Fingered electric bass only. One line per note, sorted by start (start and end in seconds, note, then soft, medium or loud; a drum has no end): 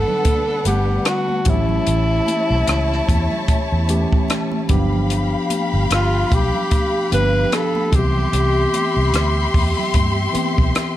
0.65 0.98 G1 medium
1.46 1.79 A1 medium
1.87 2.19 A1 medium
2.50 2.64 B1 medium
2.68 3.00 C#2 medium
3.09 3.27 E2 medium
3.48 muted fingered electric bass stroke soft
3.72 4.04 E2 medium
4.70 5.34 G1 medium
5.74 5.87 G1 medium
5.91 6.23 G1 medium
6.32 6.50 B1 medium
7.12 7.44 G1 medium
7.93 8.25 C2 medium
8.33 8.65 C2 medium
8.97 9.10 C2 medium
9.13 9.46 D2 medium
9.54 9.73 E2 medium
9.94 10.26 G2 medium
10.35 muted fingered electric bass stroke soft
10.58 10.72 B1 medium